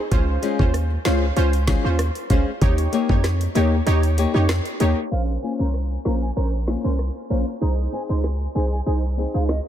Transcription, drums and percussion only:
0.12 kick loud
0.12 closed hi-hat medium
0.43 closed hi-hat medium
0.59 kick medium
0.74 cross-stick medium
0.74 closed hi-hat medium
1.05 snare loud
1.05 closed hi-hat medium
1.37 closed hi-hat medium
1.53 closed hi-hat medium
1.68 kick loud
1.68 snare loud
1.68 closed hi-hat medium
1.99 cross-stick loud
1.99 closed hi-hat loud
2.15 closed hi-hat medium
2.30 kick loud
2.30 closed hi-hat medium
2.62 kick loud
2.62 closed hi-hat medium
2.78 closed hi-hat medium
2.93 closed hi-hat medium
3.09 kick medium
3.24 cross-stick medium
3.24 snare medium
3.24 closed hi-hat medium
3.41 closed hi-hat soft
3.55 closed hi-hat medium
3.87 closed hi-hat medium
4.03 closed hi-hat medium
4.18 closed hi-hat medium
4.49 cross-stick loud
4.49 snare loud
4.49 closed hi-hat loud
4.65 closed hi-hat medium
4.80 closed hi-hat medium
5.74 cross-stick medium
6.05 snare loud
6.68 snare loud
6.99 cross-stick medium
8.24 cross-stick medium
8.24 snare medium
9.49 cross-stick medium
9.49 snare loud

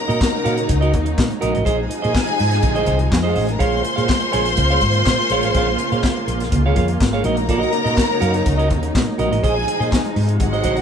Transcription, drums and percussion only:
0.10 closed hi-hat soft
0.21 kick loud
0.21 snare loud
0.21 clap medium
0.21 high conga medium
0.46 closed hi-hat medium
0.57 closed hi-hat medium
0.69 kick loud
0.69 closed hi-hat medium
0.69 muted conga medium
0.82 closed hi-hat soft
0.93 kick medium
0.93 closed hi-hat medium
0.93 low conga medium
1.06 closed hi-hat soft
1.18 kick loud
1.18 snare loud
1.18 clap medium
1.18 high conga medium
1.31 closed hi-hat soft
1.42 closed hi-hat medium
1.42 high conga medium
1.55 closed hi-hat soft
1.65 kick medium
1.65 closed hi-hat medium
1.65 muted conga soft
1.91 closed hi-hat medium
2.04 closed hi-hat soft
2.14 kick loud
2.14 snare loud
2.14 clap medium
2.14 high conga medium
2.27 closed hi-hat soft
2.39 open hi-hat medium
2.52 snare soft
2.52 closed hi-hat medium
2.63 kick loud
2.63 closed hi-hat medium
2.63 muted conga medium
2.63 low conga medium
2.76 closed hi-hat soft
2.86 kick medium
2.86 closed hi-hat medium
2.86 low conga medium
2.99 closed hi-hat soft
3.12 kick loud
3.12 snare loud
3.12 clap loud
3.12 high conga medium
3.36 open hi-hat medium
3.36 high conga medium
3.49 closed hi-hat soft
3.60 kick loud
3.60 closed hi-hat medium
3.60 muted conga soft
3.85 closed hi-hat medium
3.98 closed hi-hat soft
4.09 kick loud
4.09 snare loud
4.09 clap medium
4.09 high conga medium
4.21 closed hi-hat soft
4.33 closed hi-hat medium
4.46 snare soft
4.46 closed hi-hat medium
4.57 kick loud
4.57 closed hi-hat medium
4.57 muted conga medium
4.70 closed hi-hat soft
4.81 kick medium
4.81 closed hi-hat medium
4.81 low conga medium
4.93 closed hi-hat soft
5.06 kick loud
5.06 snare loud
5.06 clap loud
5.06 high conga medium
5.30 closed hi-hat medium
5.30 high conga medium
5.43 closed hi-hat soft
5.54 kick loud
5.54 closed hi-hat medium
5.54 muted conga medium
5.79 closed hi-hat medium
5.92 closed hi-hat soft
6.03 kick loud
6.03 snare loud
6.03 clap medium
6.03 high conga medium
6.28 closed hi-hat medium
6.40 snare soft
6.40 closed hi-hat medium
6.52 kick loud
6.52 closed hi-hat medium
6.52 muted conga medium
6.52 low conga medium
6.76 kick medium
6.76 closed hi-hat medium
6.76 low conga medium
6.88 closed hi-hat soft
7.00 kick loud
7.00 snare loud
7.00 clap medium
7.00 high conga medium
7.24 closed hi-hat medium
7.24 high conga medium
7.37 closed hi-hat soft
7.47 kick medium
7.47 closed hi-hat medium
7.47 muted conga soft
7.63 closed hi-hat soft
7.73 closed hi-hat medium
7.73 muted conga soft
7.87 closed hi-hat soft
7.96 kick loud
7.96 snare loud
7.96 clap medium
7.96 high conga medium
8.22 closed hi-hat medium
8.34 closed hi-hat soft
8.46 kick loud
8.46 closed hi-hat medium
8.46 muted conga medium
8.59 closed hi-hat soft
8.70 kick medium
8.70 closed hi-hat medium
8.70 low conga medium
8.83 closed hi-hat soft
8.95 kick loud
8.95 snare loud
8.95 clap loud
8.95 high conga medium
9.18 closed hi-hat medium
9.18 high conga medium
9.33 closed hi-hat soft
9.41 kick medium
9.41 closed hi-hat medium
9.41 muted conga soft
9.67 closed hi-hat medium
9.67 muted conga soft
9.82 closed hi-hat soft
9.91 kick loud
9.91 snare loud
9.91 clap medium
9.91 high conga medium
10.05 closed hi-hat soft
10.16 open hi-hat medium
10.29 closed hi-hat soft
10.40 kick loud
10.40 closed hi-hat medium
10.40 muted conga medium
10.40 low conga medium
10.53 closed hi-hat soft
10.64 kick medium
10.64 closed hi-hat medium
10.64 low conga medium
10.77 closed hi-hat soft

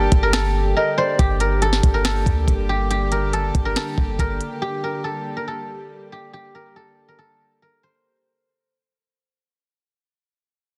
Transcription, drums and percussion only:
0.12 kick loud
0.12 closed hi-hat medium
0.33 finger snap loud
0.33 snare loud
0.33 closed hi-hat medium
1.19 kick loud
1.19 closed hi-hat medium
1.40 closed hi-hat medium
1.62 closed hi-hat medium
1.73 snare medium
1.83 kick loud
1.83 closed hi-hat medium
2.05 finger snap loud
2.05 snare loud
2.05 closed hi-hat medium
2.26 kick loud
2.26 closed hi-hat medium
2.48 kick medium
2.48 closed hi-hat medium
2.91 closed hi-hat medium
3.12 closed hi-hat medium
3.33 closed hi-hat medium
3.55 kick loud
3.55 closed hi-hat medium
3.76 finger snap loud
3.76 snare loud
3.76 closed hi-hat medium
3.98 kick loud
4.19 kick medium
4.19 closed hi-hat medium
4.41 closed hi-hat medium

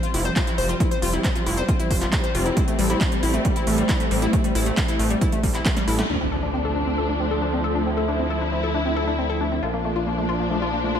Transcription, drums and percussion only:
0.03 closed hi-hat soft
0.14 open hi-hat loud
0.25 closed hi-hat soft
0.36 kick loud
0.36 clap loud
0.36 closed hi-hat medium
0.47 closed hi-hat soft
0.58 open hi-hat medium
0.69 closed hi-hat medium
0.80 kick loud
0.80 closed hi-hat medium
0.91 closed hi-hat medium
1.02 open hi-hat loud
1.13 closed hi-hat soft
1.24 kick loud
1.24 clap loud
1.24 closed hi-hat medium
1.35 closed hi-hat soft
1.46 open hi-hat medium
1.58 closed hi-hat medium
1.68 kick loud
1.68 closed hi-hat medium
1.80 closed hi-hat medium
1.91 kick medium
1.91 open hi-hat loud
2.02 clap soft
2.02 closed hi-hat soft
2.13 kick loud
2.13 clap loud
2.13 closed hi-hat medium
2.24 closed hi-hat soft
2.35 open hi-hat medium
2.46 closed hi-hat medium
2.57 kick loud
2.57 closed hi-hat medium
2.68 closed hi-hat medium
2.79 open hi-hat loud
2.90 closed hi-hat medium
3.01 kick loud
3.01 clap loud
3.01 closed hi-hat medium
3.12 closed hi-hat medium
3.23 open hi-hat medium
3.34 closed hi-hat medium
3.45 kick loud
3.45 closed hi-hat medium
3.56 closed hi-hat medium
3.67 open hi-hat loud
3.78 closed hi-hat medium
3.89 kick loud
3.89 clap loud
3.89 closed hi-hat medium
4.00 closed hi-hat medium
4.11 open hi-hat medium
4.22 closed hi-hat medium
4.33 kick loud
4.33 closed hi-hat medium
4.44 closed hi-hat medium
4.55 open hi-hat loud
4.66 closed hi-hat medium
4.77 kick loud
4.77 clap loud
4.77 closed hi-hat medium
4.88 closed hi-hat medium
4.99 open hi-hat medium
5.10 closed hi-hat medium
5.21 kick loud
5.21 closed hi-hat medium
5.32 closed hi-hat medium
5.43 kick medium
5.43 open hi-hat loud
5.55 clap soft
5.55 closed hi-hat medium
5.66 kick loud
5.66 snare medium
5.66 clap loud
5.66 closed hi-hat medium
5.77 snare medium
5.77 closed hi-hat medium
5.88 open hi-hat medium
5.99 snare medium
5.99 closed hi-hat medium
6.10 crash medium

